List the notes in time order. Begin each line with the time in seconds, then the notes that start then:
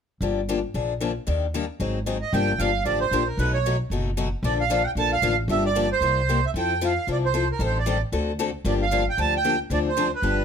0.21 G1 D3 F3 A#3 D4 G4
0.49 D3 F3 A#3 D4 G4
0.74 A#1 D3 F3 A#3 D4 G#4
1.01 D3 F3 A#3 D4 G#4
1.27 D#2 D#3 G3 A#3 D4 G4
1.54 D#3 G3 A#3 D4 G4
1.80 G#1 D#3 F#3 C4 D#4 G#4
2.06 D#3 F#3 C4 D#4 G#4
2.22 D#5
2.33 G1 D3 F3 A#3 D4 G4 G5
2.58 G1 D3 F3 A#3 D4 G4 F5
2.85 A1 D3 F3 A#3 D4 G4 D5
3.01 C5
3.11 A#1 D3 F3 A#3 D4 G4
3.27 A#4
3.37 B1 B2 F#3 A3 D#4 F#4 B4
3.53 C#5
3.66 B2 F#3 A3 D#4 F#4
3.90 F#1 B2 F#3 A3 D#4 F#4
4.17 B2 F#3 A3 D#4 F#4
4.43 A#1 D3 F3 A#3 D4 A4 D5
4.60 F5
4.70 D3 F3 A#3 D4 A4
4.83 F#5 G5
4.95 A#1 D3 F3 A#3 D4 A4 A5
5.13 F5
5.22 A1 D3 F3 A#3 D4 A4
5.48 G1 D3 F3 A#3 D4 G4 E5
5.66 D5
5.75 D3 F3 A#3 D4 G4
5.92 C5
6.01 C2 C3 G3 A#3 E4 G4
6.29 C3 G3 A#3 E4 G4
6.46 E5
6.54 F2 F3 C4 E4 A4 G5
6.81 F3 C4 E4 A4 F5
7.07 C2 F3 C4 E4 A4
7.12 D5
7.25 C5
7.34 F3 C4 E4 A4
7.52 A#4
7.59 A1 D#3 G3 C4 G4 A4
7.65 C5
7.79 D5
7.86 D#3 G3 C4 G4 A4
8.12 D2 D3 A3 C4 F#4 A4
8.39 D3 A3 C4 F#4 A4
8.64 G1 D3 F3 A#3 D4 G4 D5
8.82 F5
8.91 D3 F3 A#3 D4 G4
9.09 G5
9.17 D2 D3 F3 A#3 D4 G4 A5
9.37 G5
9.44 D3 F3 A#3 D4 G4
9.70 D2 D3 F3 C4 D4 G#4 D5
9.89 C5
9.97 D3 F3 C4 D4 G#4
10.15 B4
10.22 G1 D3 F3 B3 D4 G4